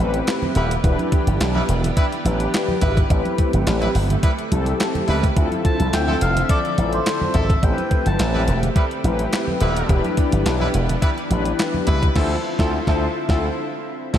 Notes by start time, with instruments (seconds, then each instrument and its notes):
Already playing: analog synth pad A3 C4 G4
0.00 slap bass A1, analog polysynth C4 E4 G4 B4
0.14 closed hi-hat
0.27 snare, clap, closed hi-hat
0.42 high conga, low conga
0.55 slap bass D#1, horn section G3 E4 B4, closed hi-hat
0.71 closed hi-hat
0.83 slap bass E1, analog synth pad E3 B3 D4, analog polysynth D4 E4 G4 B4, kick, closed hi-hat, muted conga
0.99 closed hi-hat, high conga
1.12 kick, closed hi-hat
1.27 slap bass G1, closed hi-hat, high conga
1.40 slap bass B1, snare, clap, closed hi-hat
1.55 horn section G3 E4 B4, high conga
1.69 slap bass E1, closed hi-hat
1.84 closed hi-hat, low conga
1.97 horn section G3 E4 B4, kick, closed hi-hat, muted conga
2.12 closed hi-hat
2.25 slap bass A1, analog polysynth D4 E4 G4 B4, closed hi-hat, high conga
2.40 closed hi-hat
2.54 snare, clap, closed hi-hat, muted conga
2.69 high conga, low conga
2.81 slap bass G#1, horn section G3 E4 B4, kick, closed hi-hat
2.97 kick, closed hi-hat
3.10 slap bass A1, analog synth pad A3 C4, analog polysynth C4 E4 G4 B4, kick, closed hi-hat, muted conga
3.25 closed hi-hat, high conga
3.38 kick, closed hi-hat, muted conga
3.53 slap bass G1, closed hi-hat, high conga
3.67 slap bass A1, snare, clap, closed hi-hat
3.82 horn section G3 E4 B4, closed hi-hat, high conga
3.95 slap bass G1, open hi-hat
4.10 closed hi-hat, low conga
4.23 horn section G3 E4 B4, kick, closed hi-hat, muted conga
4.39 closed hi-hat
4.51 slap bass C2, analog polysynth C4 E4 G4 A4, closed hi-hat, muted conga, high conga
4.66 closed hi-hat
4.80 snare, clap, closed hi-hat
4.95 closed hi-hat, high conga, low conga
5.08 slap bass C#2, horn section G3 E4 B4, open hi-hat, muted conga
5.23 kick, closed hi-hat
5.36 slap bass D2, analog synth pad D3 F3 E5, analog polysynth C4 E4 F4 A4, kick, closed hi-hat
5.52 closed hi-hat, high conga
5.65 melodica A5, kick, closed hi-hat, muted conga
5.80 slap bass C2, closed hi-hat, high conga
5.93 slap bass D2, melodica G5, snare, clap, closed hi-hat, muted conga
6.08 horn section F3 E4 A4, high conga
6.21 slap bass F1, melodica F5, closed hi-hat, muted conga
6.36 closed hi-hat, low conga
6.44 melodica E5
6.49 horn section F3 E4 A4, melodica D5, kick, closed hi-hat, muted conga
6.65 closed hi-hat
6.77 slap bass A1, analog polysynth C4 E4 F4 A4, closed hi-hat, high conga
6.93 melodica C5, closed hi-hat
7.06 snare, clap, closed hi-hat, muted conga
7.22 high conga, low conga
7.34 slap bass G#1, horn section F3 E4 A4, melodica E5, kick, closed hi-hat
7.50 kick, closed hi-hat
7.62 slap bass A1, analog synth pad A3 G4, analog polysynth B3 E4 G4 B4, melodica G5, kick, closed hi-hat, muted conga
7.69 analog polysynth C4
7.78 closed hi-hat, high conga
7.91 kick, closed hi-hat, muted conga
8.06 slap bass G1, melodica A5, closed hi-hat, high conga
8.19 slap bass A1, snare, clap, closed hi-hat, muted conga
8.34 horn section G3 E4 B4, high conga
8.48 slap bass E1, closed hi-hat, muted conga
8.63 closed hi-hat, low conga
8.76 horn section G3 E4 B4, kick, closed hi-hat, muted conga
8.91 closed hi-hat
9.04 slap bass A1, analog polysynth C4 E4 G4 B4, closed hi-hat, high conga
9.19 closed hi-hat
9.33 snare, clap, closed hi-hat
9.48 high conga, low conga
9.60 slap bass D#1, horn section G3 E4 B4, closed hi-hat, muted conga
9.76 closed hi-hat
9.89 slap bass E1, analog synth pad E3 B3 D4, analog polysynth D4 E4 G4 B4, kick, closed hi-hat
10.04 closed hi-hat, high conga
10.17 kick, closed hi-hat
10.32 slap bass G1, closed hi-hat, high conga
10.46 slap bass B1, snare, clap, closed hi-hat
10.61 horn section G3 E4 B4, high conga
10.74 slap bass E1, closed hi-hat, muted conga
10.89 closed hi-hat, low conga
11.02 horn section G3 E4 B4, kick, closed hi-hat
11.18 closed hi-hat
11.30 slap bass A1, analog polysynth D4 E4 G4 B4, closed hi-hat, high conga
11.45 closed hi-hat
11.59 snare, clap, closed hi-hat, muted conga
11.74 high conga, low conga
11.87 slap bass C#2, horn section G3 E4 B4, kick, closed hi-hat
12.02 kick, closed hi-hat
12.15 slap bass D2, analog synth pad D3 C4 E4 F4, horn section F3 E4 A4, analog polysynth E4 F4 A4 C5, kick, snare, crash
12.58 slap bass D2, horn section F3 E4 A4, analog polysynth E4 F4 A4 C5, kick, snare
12.87 slap bass D2, horn section F3 E4 A4, analog polysynth E4 F4 A4 C5, kick, snare
13.28 slap bass D2, horn section F3 E4 A4, analog polysynth E4 F4 A4 C5, kick, snare
14.13 slap bass D2, horn section F3 E4 A4, analog polysynth E4 F4 A4 C5, kick, snare, crash